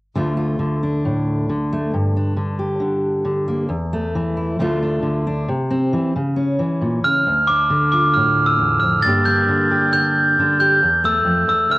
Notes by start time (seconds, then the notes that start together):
0.16 D2 D3 A3 F4
0.37 F4
0.59 D3
0.83 D4
1.05 A2
1.49 D3
1.72 A3
1.93 G2
2.16 D4
2.37 D3
2.59 G4
2.80 D3
3.25 D3
3.48 A#3
3.69 E2
3.93 A3
4.15 E3
4.37 E4
4.59 D2 D3 A3 D4 F4
4.82 D4
5.03 D3
5.27 D4
5.48 C3
5.70 C4
5.93 E3
6.16 C#3
6.36 C#4
6.59 E3
6.81 A#2
7.04 C#3 F6
7.27 D2
7.47 D4 D6
7.70 D3
7.92 F4 D6
8.14 A2 F6
8.46 E6
8.59 E2
8.80 F2 F6
9.02 G2 D3 A#3 A6
9.07 D4 G4
9.25 D4 G6
9.49 D3
9.71 G4
9.93 D3 G6
10.39 D3 D4
10.60 G4 G6
10.83 E2
11.04 A3 E6
11.25 F2
11.48 E2 E6
11.70 D2 F6